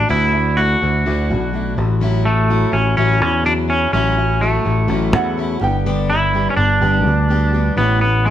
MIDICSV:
0, 0, Header, 1, 5, 480
1, 0, Start_track
1, 0, Key_signature, 3, "major"
1, 0, Tempo, 478851
1, 110, Time_signature, 4, 2, 24, 8
1, 8323, End_track
2, 0, Start_track
2, 0, Title_t, "Upright piano"
2, 0, Program_c, 0, 0
2, 5160, Note_on_c, 0, 78, 99
2, 5619, Note_off_c, 0, 78, 0
2, 5650, Note_on_c, 0, 79, 110
2, 5988, Note_off_c, 0, 79, 0
2, 8323, End_track
3, 0, Start_track
3, 0, Title_t, "Steel-string acoustic guitar"
3, 0, Program_c, 1, 25
3, 85, Note_on_c, 1, 50, 92
3, 88, Note_on_c, 1, 57, 94
3, 90, Note_on_c, 1, 62, 100
3, 98, Note_on_c, 1, 64, 101
3, 99, Note_on_c, 1, 66, 96
3, 323, Note_off_c, 1, 64, 0
3, 333, Note_off_c, 1, 66, 0
3, 335, Note_on_c, 1, 64, 57
3, 337, Note_off_c, 1, 50, 0
3, 339, Note_off_c, 1, 57, 0
3, 340, Note_off_c, 1, 62, 0
3, 345, Note_on_c, 1, 66, 48
3, 353, Note_on_c, 1, 62, 42
3, 563, Note_off_c, 1, 62, 0
3, 572, Note_on_c, 1, 57, 57
3, 574, Note_off_c, 1, 66, 0
3, 575, Note_off_c, 1, 64, 0
3, 575, Note_on_c, 1, 62, 62
3, 586, Note_on_c, 1, 66, 66
3, 587, Note_on_c, 1, 64, 76
3, 799, Note_off_c, 1, 64, 0
3, 811, Note_on_c, 1, 64, 56
3, 812, Note_off_c, 1, 66, 0
3, 820, Note_off_c, 1, 57, 0
3, 822, Note_off_c, 1, 62, 0
3, 824, Note_on_c, 1, 66, 54
3, 836, Note_on_c, 1, 62, 56
3, 1051, Note_off_c, 1, 62, 0
3, 1055, Note_off_c, 1, 66, 0
3, 1056, Note_off_c, 1, 64, 0
3, 1057, Note_on_c, 1, 50, 76
3, 1060, Note_on_c, 1, 57, 79
3, 1063, Note_on_c, 1, 62, 85
3, 1067, Note_on_c, 1, 66, 82
3, 1068, Note_on_c, 1, 64, 92
3, 1284, Note_off_c, 1, 64, 0
3, 1296, Note_on_c, 1, 64, 61
3, 1297, Note_off_c, 1, 66, 0
3, 1302, Note_off_c, 1, 50, 0
3, 1304, Note_off_c, 1, 57, 0
3, 1306, Note_off_c, 1, 62, 0
3, 1309, Note_on_c, 1, 66, 58
3, 1318, Note_on_c, 1, 62, 46
3, 1528, Note_off_c, 1, 62, 0
3, 1534, Note_on_c, 1, 57, 61
3, 1536, Note_off_c, 1, 66, 0
3, 1540, Note_on_c, 1, 62, 62
3, 1542, Note_off_c, 1, 64, 0
3, 1548, Note_on_c, 1, 66, 73
3, 1553, Note_on_c, 1, 64, 77
3, 1757, Note_off_c, 1, 64, 0
3, 1769, Note_on_c, 1, 64, 66
3, 1771, Note_off_c, 1, 66, 0
3, 1781, Note_off_c, 1, 57, 0
3, 1783, Note_on_c, 1, 66, 53
3, 1784, Note_off_c, 1, 62, 0
3, 1795, Note_on_c, 1, 61, 56
3, 2006, Note_off_c, 1, 61, 0
3, 2011, Note_on_c, 1, 45, 84
3, 2016, Note_off_c, 1, 66, 0
3, 2017, Note_on_c, 1, 54, 94
3, 2018, Note_off_c, 1, 64, 0
3, 2018, Note_on_c, 1, 61, 105
3, 2028, Note_on_c, 1, 66, 103
3, 2030, Note_on_c, 1, 64, 102
3, 2241, Note_off_c, 1, 64, 0
3, 2251, Note_off_c, 1, 66, 0
3, 2253, Note_on_c, 1, 64, 52
3, 2259, Note_off_c, 1, 45, 0
3, 2262, Note_off_c, 1, 54, 0
3, 2263, Note_off_c, 1, 61, 0
3, 2263, Note_on_c, 1, 66, 45
3, 2273, Note_on_c, 1, 61, 44
3, 2491, Note_off_c, 1, 61, 0
3, 2492, Note_on_c, 1, 54, 66
3, 2499, Note_off_c, 1, 66, 0
3, 2500, Note_off_c, 1, 64, 0
3, 2503, Note_on_c, 1, 61, 65
3, 2511, Note_on_c, 1, 66, 70
3, 2512, Note_on_c, 1, 64, 81
3, 2712, Note_off_c, 1, 64, 0
3, 2724, Note_on_c, 1, 64, 59
3, 2725, Note_off_c, 1, 66, 0
3, 2736, Note_off_c, 1, 61, 0
3, 2737, Note_on_c, 1, 66, 53
3, 2740, Note_off_c, 1, 54, 0
3, 2748, Note_on_c, 1, 61, 46
3, 2966, Note_off_c, 1, 61, 0
3, 2968, Note_off_c, 1, 66, 0
3, 2975, Note_off_c, 1, 64, 0
3, 2975, Note_on_c, 1, 45, 77
3, 2975, Note_on_c, 1, 54, 82
3, 2978, Note_on_c, 1, 61, 81
3, 2980, Note_on_c, 1, 66, 88
3, 2990, Note_on_c, 1, 64, 92
3, 3195, Note_off_c, 1, 64, 0
3, 3207, Note_on_c, 1, 64, 50
3, 3211, Note_off_c, 1, 66, 0
3, 3220, Note_off_c, 1, 61, 0
3, 3221, Note_off_c, 1, 45, 0
3, 3221, Note_off_c, 1, 54, 0
3, 3223, Note_on_c, 1, 66, 51
3, 3232, Note_on_c, 1, 61, 39
3, 3446, Note_off_c, 1, 61, 0
3, 3451, Note_on_c, 1, 54, 67
3, 3453, Note_off_c, 1, 66, 0
3, 3457, Note_off_c, 1, 64, 0
3, 3458, Note_on_c, 1, 61, 72
3, 3465, Note_on_c, 1, 66, 67
3, 3473, Note_on_c, 1, 64, 74
3, 3675, Note_off_c, 1, 64, 0
3, 3687, Note_on_c, 1, 64, 60
3, 3690, Note_off_c, 1, 66, 0
3, 3698, Note_off_c, 1, 61, 0
3, 3699, Note_off_c, 1, 54, 0
3, 3702, Note_on_c, 1, 66, 55
3, 3710, Note_on_c, 1, 61, 49
3, 3931, Note_off_c, 1, 61, 0
3, 3934, Note_on_c, 1, 45, 96
3, 3936, Note_off_c, 1, 66, 0
3, 3937, Note_off_c, 1, 64, 0
3, 3941, Note_on_c, 1, 54, 91
3, 3943, Note_on_c, 1, 61, 99
3, 3948, Note_on_c, 1, 66, 95
3, 3953, Note_on_c, 1, 64, 108
3, 4169, Note_off_c, 1, 64, 0
3, 4175, Note_off_c, 1, 66, 0
3, 4180, Note_off_c, 1, 45, 0
3, 4181, Note_on_c, 1, 64, 57
3, 4184, Note_off_c, 1, 54, 0
3, 4185, Note_off_c, 1, 61, 0
3, 4187, Note_on_c, 1, 66, 50
3, 4199, Note_on_c, 1, 61, 41
3, 4415, Note_off_c, 1, 61, 0
3, 4424, Note_off_c, 1, 64, 0
3, 4424, Note_on_c, 1, 54, 70
3, 4427, Note_off_c, 1, 66, 0
3, 4427, Note_on_c, 1, 61, 78
3, 4440, Note_on_c, 1, 66, 74
3, 4445, Note_on_c, 1, 64, 81
3, 4643, Note_off_c, 1, 64, 0
3, 4655, Note_off_c, 1, 66, 0
3, 4655, Note_on_c, 1, 64, 61
3, 4665, Note_off_c, 1, 54, 0
3, 4667, Note_off_c, 1, 61, 0
3, 4667, Note_on_c, 1, 66, 55
3, 4678, Note_on_c, 1, 61, 53
3, 4881, Note_off_c, 1, 61, 0
3, 4889, Note_off_c, 1, 66, 0
3, 4889, Note_on_c, 1, 45, 85
3, 4891, Note_off_c, 1, 64, 0
3, 4891, Note_on_c, 1, 54, 88
3, 4894, Note_on_c, 1, 61, 93
3, 4901, Note_on_c, 1, 66, 84
3, 4903, Note_on_c, 1, 64, 93
3, 5123, Note_off_c, 1, 64, 0
3, 5135, Note_on_c, 1, 64, 62
3, 5138, Note_off_c, 1, 45, 0
3, 5139, Note_off_c, 1, 54, 0
3, 5140, Note_off_c, 1, 61, 0
3, 5144, Note_off_c, 1, 66, 0
3, 5154, Note_on_c, 1, 66, 58
3, 5156, Note_on_c, 1, 61, 49
3, 5377, Note_off_c, 1, 61, 0
3, 5379, Note_on_c, 1, 54, 67
3, 5381, Note_off_c, 1, 64, 0
3, 5386, Note_off_c, 1, 66, 0
3, 5389, Note_on_c, 1, 61, 81
3, 5398, Note_on_c, 1, 66, 76
3, 5403, Note_on_c, 1, 64, 84
3, 5617, Note_off_c, 1, 64, 0
3, 5621, Note_on_c, 1, 67, 72
3, 5623, Note_off_c, 1, 54, 0
3, 5625, Note_off_c, 1, 66, 0
3, 5628, Note_off_c, 1, 61, 0
3, 5629, Note_on_c, 1, 62, 53
3, 5639, Note_on_c, 1, 59, 63
3, 5643, Note_on_c, 1, 55, 54
3, 5864, Note_off_c, 1, 67, 0
3, 5866, Note_off_c, 1, 55, 0
3, 5866, Note_off_c, 1, 59, 0
3, 5868, Note_off_c, 1, 62, 0
3, 5871, Note_on_c, 1, 43, 99
3, 5877, Note_on_c, 1, 50, 108
3, 5878, Note_on_c, 1, 55, 111
3, 5878, Note_on_c, 1, 59, 108
3, 5882, Note_on_c, 1, 62, 99
3, 5886, Note_on_c, 1, 67, 109
3, 6103, Note_off_c, 1, 67, 0
3, 6106, Note_off_c, 1, 62, 0
3, 6109, Note_off_c, 1, 43, 0
3, 6112, Note_off_c, 1, 50, 0
3, 6112, Note_off_c, 1, 55, 0
3, 6112, Note_off_c, 1, 59, 0
3, 6115, Note_on_c, 1, 67, 51
3, 6118, Note_on_c, 1, 62, 49
3, 6128, Note_on_c, 1, 59, 50
3, 6134, Note_on_c, 1, 55, 47
3, 6334, Note_off_c, 1, 55, 0
3, 6344, Note_off_c, 1, 59, 0
3, 6346, Note_on_c, 1, 55, 70
3, 6351, Note_off_c, 1, 67, 0
3, 6352, Note_off_c, 1, 62, 0
3, 6356, Note_on_c, 1, 59, 70
3, 6363, Note_on_c, 1, 62, 76
3, 6369, Note_on_c, 1, 67, 79
3, 6569, Note_off_c, 1, 67, 0
3, 6580, Note_off_c, 1, 62, 0
3, 6581, Note_on_c, 1, 67, 59
3, 6585, Note_off_c, 1, 59, 0
3, 6587, Note_off_c, 1, 55, 0
3, 6592, Note_on_c, 1, 62, 58
3, 6597, Note_on_c, 1, 59, 50
3, 6603, Note_on_c, 1, 55, 48
3, 6821, Note_off_c, 1, 55, 0
3, 6824, Note_off_c, 1, 67, 0
3, 6829, Note_off_c, 1, 59, 0
3, 6829, Note_off_c, 1, 62, 0
3, 6830, Note_on_c, 1, 43, 71
3, 6832, Note_on_c, 1, 50, 87
3, 6833, Note_on_c, 1, 55, 81
3, 6841, Note_on_c, 1, 59, 86
3, 6842, Note_on_c, 1, 62, 99
3, 6843, Note_on_c, 1, 67, 86
3, 7064, Note_off_c, 1, 67, 0
3, 7069, Note_off_c, 1, 43, 0
3, 7069, Note_off_c, 1, 50, 0
3, 7070, Note_off_c, 1, 55, 0
3, 7072, Note_off_c, 1, 62, 0
3, 7074, Note_off_c, 1, 59, 0
3, 7076, Note_on_c, 1, 67, 51
3, 7084, Note_on_c, 1, 62, 60
3, 7090, Note_on_c, 1, 59, 48
3, 7101, Note_on_c, 1, 55, 40
3, 7292, Note_off_c, 1, 55, 0
3, 7304, Note_off_c, 1, 59, 0
3, 7304, Note_on_c, 1, 55, 72
3, 7308, Note_off_c, 1, 62, 0
3, 7311, Note_off_c, 1, 67, 0
3, 7316, Note_on_c, 1, 59, 77
3, 7320, Note_on_c, 1, 62, 85
3, 7326, Note_on_c, 1, 67, 92
3, 7536, Note_off_c, 1, 67, 0
3, 7546, Note_off_c, 1, 55, 0
3, 7548, Note_off_c, 1, 62, 0
3, 7548, Note_on_c, 1, 67, 66
3, 7551, Note_off_c, 1, 59, 0
3, 7560, Note_on_c, 1, 62, 67
3, 7565, Note_on_c, 1, 59, 60
3, 7569, Note_on_c, 1, 55, 55
3, 7783, Note_off_c, 1, 59, 0
3, 7787, Note_on_c, 1, 45, 83
3, 7788, Note_off_c, 1, 67, 0
3, 7792, Note_off_c, 1, 55, 0
3, 7794, Note_off_c, 1, 62, 0
3, 7795, Note_on_c, 1, 59, 104
3, 7796, Note_on_c, 1, 52, 98
3, 7800, Note_on_c, 1, 61, 91
3, 7803, Note_on_c, 1, 64, 98
3, 8021, Note_off_c, 1, 64, 0
3, 8028, Note_off_c, 1, 45, 0
3, 8032, Note_off_c, 1, 52, 0
3, 8032, Note_off_c, 1, 59, 0
3, 8033, Note_on_c, 1, 64, 49
3, 8034, Note_off_c, 1, 61, 0
3, 8047, Note_on_c, 1, 61, 52
3, 8057, Note_on_c, 1, 59, 39
3, 8266, Note_off_c, 1, 59, 0
3, 8269, Note_on_c, 1, 52, 65
3, 8271, Note_off_c, 1, 61, 0
3, 8271, Note_off_c, 1, 64, 0
3, 8278, Note_on_c, 1, 59, 66
3, 8283, Note_on_c, 1, 61, 77
3, 8323, Note_off_c, 1, 52, 0
3, 8323, Note_off_c, 1, 59, 0
3, 8323, Note_off_c, 1, 61, 0
3, 8323, End_track
4, 0, Start_track
4, 0, Title_t, "Clean electric guitar"
4, 0, Program_c, 2, 27
4, 0, Note_on_c, 2, 62, 108
4, 101, Note_off_c, 2, 62, 0
4, 2260, Note_on_c, 2, 57, 93
4, 2758, Note_off_c, 2, 57, 0
4, 3467, Note_on_c, 2, 62, 111
4, 3532, Note_off_c, 2, 62, 0
4, 4424, Note_on_c, 2, 57, 87
4, 5585, Note_off_c, 2, 57, 0
4, 6111, Note_on_c, 2, 64, 106
4, 6515, Note_off_c, 2, 64, 0
4, 6519, Note_on_c, 2, 61, 78
4, 6577, Note_off_c, 2, 61, 0
4, 8273, Note_on_c, 2, 57, 73
4, 8323, Note_off_c, 2, 57, 0
4, 8323, End_track
5, 0, Start_track
5, 0, Title_t, "Picked electric bass"
5, 0, Program_c, 3, 34
5, 105, Note_on_c, 3, 38, 104
5, 749, Note_off_c, 3, 38, 0
5, 825, Note_on_c, 3, 38, 86
5, 1041, Note_off_c, 3, 38, 0
5, 1072, Note_on_c, 3, 38, 95
5, 1308, Note_on_c, 3, 35, 88
5, 1323, Note_off_c, 3, 38, 0
5, 1736, Note_off_c, 3, 35, 0
5, 1783, Note_on_c, 3, 33, 114
5, 2641, Note_off_c, 3, 33, 0
5, 2735, Note_on_c, 3, 33, 86
5, 2954, Note_off_c, 3, 33, 0
5, 2979, Note_on_c, 3, 33, 94
5, 3223, Note_off_c, 3, 33, 0
5, 3223, Note_on_c, 3, 40, 90
5, 3867, Note_off_c, 3, 40, 0
5, 3942, Note_on_c, 3, 33, 98
5, 4587, Note_off_c, 3, 33, 0
5, 4668, Note_on_c, 3, 33, 89
5, 4882, Note_off_c, 3, 33, 0
5, 4901, Note_on_c, 3, 33, 93
5, 5142, Note_off_c, 3, 33, 0
5, 5142, Note_on_c, 3, 40, 99
5, 5573, Note_off_c, 3, 40, 0
5, 5626, Note_on_c, 3, 31, 107
5, 6483, Note_off_c, 3, 31, 0
5, 6586, Note_on_c, 3, 31, 102
5, 6800, Note_off_c, 3, 31, 0
5, 6827, Note_on_c, 3, 31, 102
5, 7073, Note_off_c, 3, 31, 0
5, 7073, Note_on_c, 3, 38, 93
5, 7713, Note_off_c, 3, 38, 0
5, 7786, Note_on_c, 3, 33, 110
5, 8323, Note_off_c, 3, 33, 0
5, 8323, End_track
0, 0, End_of_file